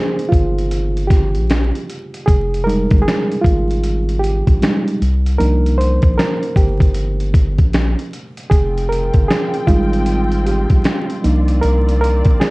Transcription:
0.00 2.29 F3 medium
0.00 2.29 A#3 soft
0.00 2.29 D4 soft
0.00 2.29 D#4 medium
0.00 0.32 G#4 medium
0.00 2.29 A#4 medium
0.00 2.29 C5 medium
0.19 closed hi-hat soft
0.29 1.37 G1 medium
0.29 1.11 F4 medium
0.29 kick medium
0.34 closed hi-hat medium
0.58 closed hi-hat soft
0.71 closed hi-hat medium
0.97 closed hi-hat soft
1.07 1.83 G4 medium
1.07 kick medium
1.07 snare soft
1.07 closed hi-hat medium
1.35 1.72 A#1 medium
1.35 closed hi-hat soft
1.50 finger snap medium
1.50 snare loud
1.50 closed hi-hat medium
1.75 closed hi-hat soft
1.90 closed hi-hat medium
2.14 closed hi-hat medium
2.26 2.87 F1 loud
2.26 2.67 G#4 medium
2.26 kick loud
2.26 closed hi-hat medium
2.54 closed hi-hat soft
2.64 3.21 G3 soft
2.64 3.22 G#3 soft
2.64 3.22 D#4 medium
2.64 2.82 A#4 medium
2.69 closed hi-hat medium
2.91 3.05 G1 medium
2.91 kick medium
2.91 closed hi-hat soft
3.02 3.44 G#4 medium
3.08 finger snap medium
3.08 snare loud
3.08 closed hi-hat medium
3.32 closed hi-hat soft
3.41 4.42 G#1 medium
3.41 4.23 F4 medium
3.41 kick medium
3.46 closed hi-hat medium
3.71 closed hi-hat soft
3.84 closed hi-hat medium
4.09 closed hi-hat soft
4.19 4.95 G4 medium
4.24 closed hi-hat medium
4.47 4.61 A#1 medium
4.47 kick medium
4.47 closed hi-hat soft
4.61 4.96 G3 soft
4.61 4.97 G#3 soft
4.61 4.97 D#4 medium
4.61 finger snap medium
4.61 snare loud
4.61 closed hi-hat medium
4.88 closed hi-hat soft
5.02 5.38 C2 loud
5.02 closed hi-hat medium
5.26 closed hi-hat medium
5.38 5.99 C2 loud
5.38 5.94 F3 medium
5.38 5.94 A#3 soft
5.38 5.94 D4 soft
5.38 5.95 D#4 medium
5.38 5.79 A#4 medium
5.38 closed hi-hat medium
5.66 closed hi-hat soft
5.78 6.18 C5 medium
5.78 closed hi-hat medium
6.02 6.17 A#1 medium
6.02 kick medium
6.02 closed hi-hat soft
6.18 6.57 A#4 medium
6.18 finger snap medium
6.18 snare loud
6.18 closed hi-hat medium
6.43 closed hi-hat soft
6.56 7.61 G1 medium
6.56 8.08 G4 medium
6.56 kick medium
6.56 closed hi-hat medium
6.80 kick medium
6.80 closed hi-hat soft
6.94 closed hi-hat medium
7.20 closed hi-hat soft
7.34 kick medium
7.34 closed hi-hat medium
7.58 7.95 A#1 medium
7.58 kick medium
7.58 closed hi-hat soft
7.73 finger snap medium
7.73 snare loud
7.73 closed hi-hat medium
7.99 closed hi-hat soft
8.13 closed hi-hat medium
8.37 closed hi-hat medium
8.50 9.10 F1 loud
8.50 12.50 D#3 medium
8.50 11.21 F3 medium
8.50 11.21 C4 medium
8.50 12.50 F4 medium
8.50 8.91 G#4 medium
8.50 11.21 G5 medium
8.50 kick loud
8.50 closed hi-hat medium
8.78 closed hi-hat soft
8.89 9.30 A#4 medium
8.89 closed hi-hat medium
9.14 9.28 G1 medium
9.14 kick medium
9.14 closed hi-hat soft
9.28 9.46 G#4 medium
9.28 finger snap medium
9.28 snare loud
9.28 closed hi-hat medium
9.54 closed hi-hat soft
9.67 10.66 G#1 medium
9.67 10.80 G3 medium
9.67 10.81 G#3 medium
9.67 10.81 D#4 medium
9.67 10.41 F4 medium
9.67 kick medium
9.67 closed hi-hat medium
9.93 closed hi-hat soft
10.06 closed hi-hat medium
10.32 closed hi-hat soft
10.46 11.20 G4 medium
10.46 closed hi-hat medium
10.70 10.84 A#1 medium
10.70 kick medium
10.70 closed hi-hat soft
10.84 finger snap medium
10.84 snare loud
10.84 closed hi-hat medium
11.10 closed hi-hat soft
11.23 11.61 C2 loud
11.23 11.79 F3 medium
11.23 11.79 A#3 medium
11.23 12.50 A#3 medium
11.23 12.50 C4 medium
11.23 11.79 D4 soft
11.23 11.79 D#4 medium
11.23 12.50 D5 medium
11.23 closed hi-hat medium
11.48 closed hi-hat medium
11.61 12.22 C2 loud
11.61 12.00 A#4 loud
11.61 closed hi-hat medium
11.89 closed hi-hat soft
12.01 12.37 A#4 medium
12.01 closed hi-hat medium
12.25 12.40 A#1 medium
12.25 kick medium
12.25 closed hi-hat soft
12.40 12.50 G#4 medium
12.40 finger snap medium
12.40 snare loud
12.40 closed hi-hat medium

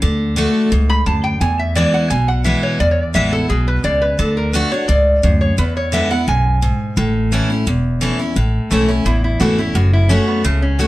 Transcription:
0.02 0.45 D2 loud
0.02 0.35 D3 medium
0.36 0.70 D3 medium
0.36 0.70 A3 medium
0.36 0.70 D4 medium
0.36 0.71 F#4 loud
0.72 1.01 C#2 medium
0.72 1.05 G#2 medium
0.90 1.06 B5 loud
1.06 1.36 D2 medium
1.06 1.39 F#2 medium
1.06 1.24 A5 medium
1.24 1.40 G5 loud
1.41 1.83 E2 loud
1.41 2.07 E2 medium
1.41 1.59 G#5 loud
1.59 1.76 E5 medium
1.75 2.09 E3 medium
1.75 2.09 G#3 medium
1.75 2.10 B3 medium
1.75 2.10 E4 loud
1.75 1.94 D5 medium
1.94 2.10 F#5 loud
2.10 2.53 B1 medium
2.10 2.77 B2 medium
2.10 2.28 G#5 loud
2.28 2.44 F#5 loud
2.44 2.78 E3 medium
2.44 2.78 G#3 medium
2.44 2.79 B3 medium
2.44 2.79 E4 medium
2.44 2.63 E5 medium
2.63 2.79 C#5 medium
2.80 3.46 E2 medium
2.80 3.01 E2 loud
2.80 2.91 D5 loud
2.91 3.03 C#5 medium
3.03 3.14 D5 medium
3.14 3.44 A1 medium
3.14 3.32 E3 medium
3.14 3.32 G#3 medium
3.14 3.33 B3 loud
3.14 3.31 E4 loud
3.14 3.32 E5 loud
3.33 3.50 B3 soft
3.33 3.49 E4 medium
3.33 3.49 A4 loud
3.49 3.79 B1 medium
3.49 3.83 B2 medium
3.49 3.67 G#4 medium
3.68 3.84 B4 loud
3.84 4.14 C#2 medium
3.84 4.17 C#3 medium
3.84 4.02 D5 medium
4.02 4.18 B4 medium
4.19 4.61 D2 loud
4.19 4.52 D3 medium
4.19 4.37 A4 medium
4.37 4.53 A#4 medium
4.53 4.71 D3 medium
4.53 4.71 A3 medium
4.53 4.72 D4 medium
4.53 4.70 F#4 loud
4.53 4.71 B4 medium
4.71 4.89 D4 soft
4.71 4.88 F#4 medium
4.71 4.87 C#5 loud
4.88 5.18 C#2 medium
4.88 5.22 G#2 medium
4.88 5.37 D5 loud
5.23 5.53 D2 loud
5.23 5.56 F#2 medium
5.41 5.57 C#5 medium
5.58 6.24 E2 medium
5.58 6.00 E2 medium
5.58 5.76 B4 medium
5.77 5.93 C#5 loud
5.92 6.10 D3 medium
5.92 6.10 G#3 medium
5.92 6.11 B3 loud
5.92 6.09 E4 medium
5.92 6.11 E5 medium
6.11 6.28 B3 soft
6.11 6.27 E4 medium
6.11 6.27 F#5 loud
6.28 6.70 B1 medium
6.28 6.61 F#2 medium
6.28 7.28 G#5 loud
6.62 6.95 G#2 medium
6.97 7.39 A1 loud
6.97 7.63 A2 medium
7.32 7.49 E3 medium
7.32 7.50 A3 medium
7.32 7.50 C#4 medium
7.32 7.49 E4 medium
7.50 7.67 C#4 soft
7.50 7.66 E4 medium
7.66 8.09 E1 medium
7.66 8.33 E2 medium
8.01 8.19 E3 medium
8.01 8.19 A3 medium
8.01 8.19 C#4 medium
8.01 8.18 E4 medium
8.19 8.36 C#4 soft
8.19 8.35 E4 medium
8.36 8.57 A1 medium
8.36 9.02 A2 medium
8.71 9.00 B1 medium
8.71 8.88 E3 medium
8.71 8.90 A3 medium
8.71 8.89 A3 medium
8.71 8.89 C#4 loud
8.71 8.87 E4 medium
8.88 9.05 C#4 medium
8.88 9.06 C#4 soft
8.88 9.05 E4 medium
9.05 9.35 A1 medium
9.05 9.72 E2 medium
9.05 9.22 E4 loud
9.24 9.39 E4 medium
9.40 9.70 G#1 medium
9.40 9.58 E3 medium
9.40 9.58 A3 medium
9.40 9.58 C#4 medium
9.40 9.57 E4 medium
9.40 9.59 F#4 medium
9.58 9.75 C#4 soft
9.58 9.74 E4 medium
9.58 9.76 E4 medium
9.75 10.17 F#1 medium
9.75 10.41 F#2 medium
9.75 9.93 F#4 medium
9.93 10.10 E4 medium
10.09 10.43 F#3 medium
10.09 10.43 A3 medium
10.09 10.28 C#4 loud
10.09 10.43 C#4 medium
10.09 10.44 F#4 loud
10.28 10.44 B3 medium
10.44 10.87 C#2 medium
10.44 10.87 C#3 loud
10.44 10.61 A3 medium
10.62 10.78 C#4 medium
10.79 10.87 F#3 medium
10.79 10.87 A3 medium
10.79 10.87 C#4 medium
10.79 10.87 F#4 medium
10.79 10.87 F#4 loud

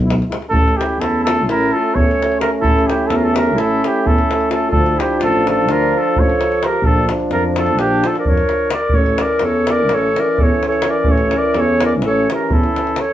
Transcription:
0.00 0.21 B1 medium
0.05 0.16 G#3 medium
0.05 0.14 E4 medium
0.10 davul high medium
0.22 davul high soft
0.29 0.38 G#3 medium
0.29 0.37 E4 medium
0.29 davul high medium
0.42 davul high soft
0.48 0.77 A1 loud
0.48 4.74 A3 medium
0.48 4.72 C#4 medium
0.48 0.78 E4 medium
0.48 0.78 A4 loud
0.54 davul low medium
0.68 davul high soft
0.77 0.99 E4 medium
0.77 1.02 G4 medium
0.77 davul high medium
0.98 1.48 E2 medium
0.98 1.25 E4 medium
0.98 1.23 A4 medium
0.98 davul high medium
1.24 1.44 A4 loud
1.24 davul high medium
1.28 1.47 F4 medium
1.47 1.73 A1 medium
1.47 1.76 E4 loud
1.47 1.74 A#4 loud
1.47 davul high medium
1.72 1.97 F4 medium
1.72 1.96 A4 medium
1.95 2.08 E2 loud
1.95 2.40 A4 medium
1.95 2.40 C#5 loud
1.95 davul low medium
2.11 davul high soft
2.22 davul high medium
2.32 davul high soft
2.41 2.50 G4 medium
2.41 2.50 A#4 medium
2.41 davul high medium
2.60 2.88 A1 medium
2.60 2.89 E4 medium
2.60 2.89 A4 loud
2.60 davul low medium
2.79 davul high soft
2.87 3.10 E4 medium
2.87 3.09 G4 medium
2.87 davul high medium
3.07 3.59 E2 loud
3.07 3.17 E4 medium
3.07 3.17 A4 medium
3.07 davul high medium
3.15 3.32 F4 medium
3.15 3.20 G4 medium
3.15 3.25 A#4 medium
3.24 3.36 A4 medium
3.33 3.57 G4 medium
3.33 davul high medium
3.37 3.61 A#4 medium
3.56 3.84 A1 medium
3.56 3.83 E4 medium
3.56 3.88 A4 medium
3.56 davul high medium
3.83 4.02 E4 medium
3.83 4.08 G4 medium
3.83 davul high medium
4.02 4.19 E2 medium
4.02 4.49 E4 medium
4.07 4.51 A4 loud
4.07 davul low medium
4.18 davul high soft
4.31 davul high medium
4.41 davul high soft
4.50 4.67 F4 medium
4.50 4.70 A4 medium
4.50 davul high medium
4.68 6.66 D4 medium
4.68 4.97 F4 medium
4.68 5.01 A4 loud
4.72 4.99 D2 medium
4.72 6.82 F3 loud
4.72 davul low medium
4.86 davul high soft
4.96 5.19 E4 medium
4.96 5.20 G4 medium
5.00 davul high medium
5.19 5.70 A1 medium
5.19 5.44 F4 medium
5.19 davul high medium
5.23 5.46 A4 loud
5.46 5.67 F4 medium
5.46 davul high medium
5.50 5.73 A4 medium
5.67 5.95 D2 medium
5.67 5.95 F4 medium
5.67 davul high medium
5.71 6.00 A#4 loud
5.95 6.21 F4 medium
5.99 6.21 A4 medium
6.16 6.30 A1 medium
6.16 6.68 A4 medium
6.16 6.66 C#5 loud
6.16 davul low medium
6.30 davul high soft
6.41 davul high medium
6.52 davul high soft
6.63 6.87 A#4 medium
6.63 davul high medium
6.67 6.87 G4 medium
6.82 7.08 A#1 medium
6.82 8.73 F3 medium
6.82 8.73 D4 medium
6.82 7.10 F4 medium
6.82 7.10 A4 medium
6.82 davul low medium
7.09 davul high medium
7.20 davul high soft
7.30 7.79 F2 medium
7.30 7.44 F4 medium
7.30 7.44 A#4 medium
7.30 davul high medium
7.56 7.79 F4 medium
7.56 7.81 A4 medium
7.56 davul high medium
7.66 davul high soft
7.77 8.04 A#1 medium
7.77 8.06 D4 loud
7.77 8.09 G4 loud
7.77 davul high medium
8.04 8.18 F4 medium
8.04 8.19 A4 medium
8.04 davul high medium
8.15 8.26 A#4 medium
8.15 8.30 D5 medium
8.15 davul high soft
8.25 8.40 F2 medium
8.25 8.72 A#4 medium
8.25 8.72 C#5 loud
8.25 davul low medium
8.38 davul high soft
8.49 davul high soft
8.70 8.99 A#4 medium
8.70 8.96 D5 loud
8.70 davul high medium
8.80 davul high soft
8.89 9.20 A1 medium
8.89 13.12 E3 medium
8.89 13.11 C#4 medium
8.89 davul low medium
8.95 9.24 A4 medium
8.95 9.23 C#5 loud
9.06 davul high soft
9.18 9.46 D5 medium
9.18 davul high medium
9.23 9.46 A#4 medium
9.39 9.92 E2 medium
9.39 davul high medium
9.44 9.74 A4 medium
9.44 9.72 C#5 medium
9.67 9.96 D5 loud
9.67 davul high medium
9.73 9.96 A#4 medium
9.89 10.17 A1 medium
9.89 davul high medium
9.94 10.21 A4 loud
9.94 10.22 C#5 medium
10.16 10.42 A#4 medium
10.16 davul high medium
10.21 10.45 D5 medium
10.38 10.52 E2 loud
10.38 10.63 A4 medium
10.38 davul low medium
10.43 10.65 C#5 medium
10.63 davul high medium
10.68 10.90 A4 medium
10.68 10.92 C#5 medium
10.72 davul high soft
10.82 davul high medium
10.88 11.10 A#4 medium
10.88 11.13 D5 medium
11.04 11.32 A1 loud
11.04 davul low medium
11.09 11.38 A4 medium
11.09 11.40 C#5 medium
11.18 davul high soft
11.31 davul high medium
11.36 11.58 A#4 medium
11.36 11.62 D5 loud
11.54 12.04 E2 medium
11.54 11.81 A4 medium
11.54 davul high medium
11.60 11.83 C#5 loud
11.80 11.93 A#4 medium
11.80 davul high medium
11.86 11.94 D5 medium
12.02 12.29 A1 medium
12.02 davul high medium
12.06 12.29 A4 loud
12.06 12.30 C#5 loud
12.30 12.52 G4 medium
12.30 davul high medium
12.34 12.55 A#4 medium
12.50 12.64 E2 loud
12.50 13.00 E4 medium
12.50 13.02 A4 medium
12.50 davul low medium
12.64 davul high soft
12.76 davul high medium
12.87 davul high soft
12.96 13.13 A4 medium
12.96 13.13 C#5 medium
12.96 davul high medium

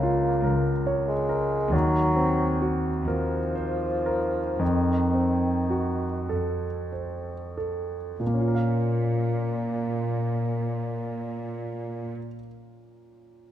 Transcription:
0.00 1.68 C#2 soft
0.00 0.91 A#3 medium
0.00 0.28 C#4 soft
0.00 0.70 F4 soft
0.44 1.55 C#2 soft
0.44 1.12 A#4 soft
0.87 1.55 C#5 soft
1.08 1.74 G#3 medium
1.29 1.72 A#4 soft
1.72 2.89 D#2 medium
1.72 4.56 D#2 soft
1.72 2.72 F#3 medium
2.16 2.89 C4 soft
2.62 3.37 F#4 soft
3.07 4.40 D#2 soft
3.07 4.61 F3 medium
3.07 3.86 A#4 soft
3.55 4.38 C5 soft
4.06 4.60 A#4 soft
4.59 8.15 F2 soft
4.59 6.08 F2 soft
4.59 6.30 D#3 soft
5.14 6.06 C4 soft
5.70 6.66 F#4 soft
6.29 7.98 F2 soft
6.29 7.32 A4 soft
6.92 7.96 C5 soft
7.58 8.19 A4 soft
8.20 12.12 A#2 soft
8.27 12.19 A#3 soft
8.34 12.26 C#4 soft
8.41 12.33 F4 soft
8.48 12.40 A#4 soft
8.55 12.47 F5 soft

